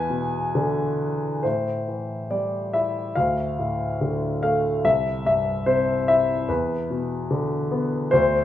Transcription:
Already playing: E2 B4 G#5
0.10 B2
0.55 D3
1.43 A2 C5
1.88 E3
2.31 G3 D5
2.73 E4 E5
3.15 D2 F5
3.59 A2
4.01 D3
4.43 A3 F5
4.85 C2 E5
5.25 G2 E5
5.66 C3 C5
6.08 E4 E5
6.49 E2 B4
6.91 B2
7.31 D3
7.71 B3
8.11 D2 C5

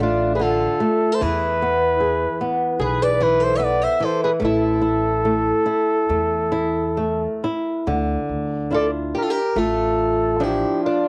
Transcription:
Already playing: A1
0.00 A3 D4 F4
0.35 G#4 B4
0.39 D3 F4 A4
0.80 A3
1.12 A4 C5
1.21 E2 E3 G#4 B4
1.62 B3
2.00 G#4
2.41 B3
2.79 B1 G#4 B4
3.02 B4 D5
3.20 E3 G#4 B4
3.40 A4 C5
3.55 B3 C5 E5
3.60 B4
3.64 D5
3.82 C5 E5
4.00 E3 A4
4.05 C5
4.23 G#4 B4
4.40 A1 A3
4.45 E4 A4
4.82 E4
5.25 A3
5.66 E4
6.09 E2 A3
6.52 E4
6.97 A3
7.44 E4
7.87 D2 D3
8.29 D2
8.70 D4 E4 F4 A4
8.75 D5
9.15 G4 A#4
9.22 F4 A4
9.30 G4 A#4
9.56 A1 A3 F4 A4
10.40 F3 D4 E4 E5
10.44 G4
10.84 D4 F4

